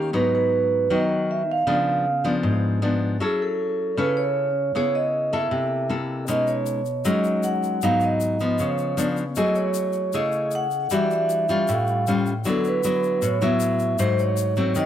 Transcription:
Already playing: D#3 G4
0.13 G#2 F#3 B3 D#4 B4
0.35 B4
0.90 D#3 F#3 B3 D#4 D#5
1.31 E5
1.51 F5
1.67 C#3 F3 B3 D4
2.24 F3 B3 D4
2.43 G#2
2.82 F3 B3 D4
3.20 F#3 C#4 E4 G#4 A4
3.42 A4
3.97 C#3 C#4 E4 A4 B4
4.17 C#5
4.75 C#3 B3 E4 G#4 C#5
4.95 D#5
5.33 A#3 E4 A4 E5
5.51 C3
5.89 A#3 E4 A4
6.28 B2 G#3 C#4 D#4 D#5, shaker
6.47 C#5, shaker
6.66 shaker
6.85 shaker
7.05 F#3 G#3 C#4 D#4 D#5, shaker
7.24 shaker
7.43 F#5, shaker
7.63 shaker
7.82 G#2 F#3 B3 D#4 F5, shaker
8.00 D#5, shaker
8.20 shaker
8.40 F3 B3, shaker
8.58 C#3 C#5, shaker
8.78 shaker
8.97 F3 B3 D4, shaker
9.17 shaker
9.36 F#3 A3 E4 G#4 D#5, shaker
9.55 C#5, shaker
9.74 shaker
9.93 shaker
10.13 C#3 A3 E4 G#4 D#5, shaker
10.32 shaker
10.51 shaker
10.55 F#5
10.71 shaker
10.90 E3 G3 D4 F#4 E5, shaker
11.11 E5, shaker
11.29 shaker
11.49 G3 C#4 F4, shaker
11.68 A2 F5, shaker
11.87 shaker
12.07 G3 C#4 F4, shaker
12.26 shaker
12.44 D3 F#3 B3 E4, shaker
12.49 A4
12.64 B4, shaker
12.83 F#3 B3 E4, shaker
13.03 shaker
13.22 A2 C#5, shaker
13.41 F#3 B3 E4 E5, shaker
13.60 shaker
13.79 shaker
13.99 G#2 F#3 A3 C5, shaker
14.19 C#5, shaker
14.37 shaker
14.56 F#3 A3 C4, shaker
14.75 D#3 D#5, shaker

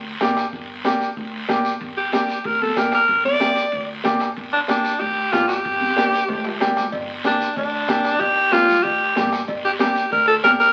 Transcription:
Already playing: D2
0.21 G1 A#3 D4 G4, bombo rim, high conga, short guiro
0.37 bombo rim, short guiro
0.53 G1, bombo low, high conga, long guiro
0.84 A#3 D4 G4, bombo rim, high conga, short guiro
1.01 short guiro
1.17 D2, bombo low, high conga, long guiro
1.49 G1 A#3 D4 G4, bombo low, bombo rim, high conga, short guiro
1.65 short guiro
1.81 G1, bombo low, high conga, high timbale, long guiro
1.97 G4
2.12 A#3 D4 G4, bombo rim, high conga, high timbale, short guiro
2.29 high timbale, short guiro
2.44 D2 A#4, bombo low, high conga, high timbale, long guiro
2.62 A4, high conga
2.76 G1 A#3 D4 G4 A#4, bombo rim, high conga, high timbale, short guiro
2.92 A#4, bombo rim, high timbale, short guiro
3.08 G1, bombo low, high conga, high timbale, long guiro
3.25 D5, high conga
3.40 A#3 D4 G4, bombo rim, high conga, high timbale, short guiro
3.56 high timbale, short guiro
3.72 D2, bombo low, high conga, high timbale, long guiro
4.04 G1 A#3 D4 G4, bombo low, bombo rim, high conga, high timbale, short guiro
4.20 bombo rim, high timbale, short guiro
4.37 G1, bombo low, high conga, high timbale, long guiro
4.53 D4
4.68 A#3 D4 G4, bombo rim, high conga, high timbale, short guiro
4.84 high timbale, short guiro
5.00 D2 G4, bombo low, high conga, high timbale, long guiro
5.32 G1 A#3 D4 F4 G4, bombo rim, high conga, high timbale, low timbale, short guiro
5.48 G4, bombo rim, high timbale, short guiro
5.65 G1, bombo low, high conga, high timbale, long guiro
5.81 high conga
5.96 A#3 D4 G4, bombo rim, high conga, high timbale, short guiro
6.12 high timbale, short guiro
6.28 D2, bombo low, high conga, low timbale, long guiro
6.45 low timbale
6.60 G1 A#3 D4 G4, bombo rim, high conga, low timbale, short guiro
6.76 bombo rim, low timbale, short guiro
6.92 G1, bombo low, cowbell, high conga, long guiro
7.24 A#3 D4 G4, bombo rim, high conga, short guiro
7.41 short guiro
7.56 D2 D4, bombo low, cowbell, high conga, long guiro
7.88 G1 A#3 D4 G4, bombo rim, high conga, short guiro
8.04 bombo rim, short guiro
8.20 G1 G4, bombo low, cowbell, high conga, long guiro
8.52 A#3 D4 F4 G4, bombo rim, high conga, short guiro
8.68 low conga, short guiro
8.83 D2 G4, bombo low, cowbell, high conga, long guiro
9.16 G1 A#3 D4 G4, bombo low, bombo rim, high conga, low conga, short guiro
9.32 bombo rim, short guiro
9.48 G1, bombo low, cowbell, high conga, long guiro
9.65 G4
9.79 A#3 D4 G4, bombo rim, high conga, short guiro
9.96 short guiro
10.11 D2 A#4, bombo low, cowbell, high conga, long guiro
10.28 A4
10.44 G1 A#3 D4 G4 A#4, bombo rim, high conga, short guiro
10.60 A#4, short guiro

